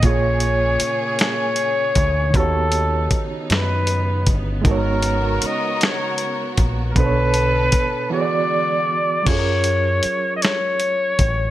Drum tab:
CC |------|------|------|------|
HH |xxxxxx|xxxxxx|xxxxxx|xxx---|
SD |---o--|---o--|---o--|------|
BD |o----o|o-o--o|o----o|o-o---|

CC |x-----|
HH |xxxxxx|
SD |---o--|
BD |o----o|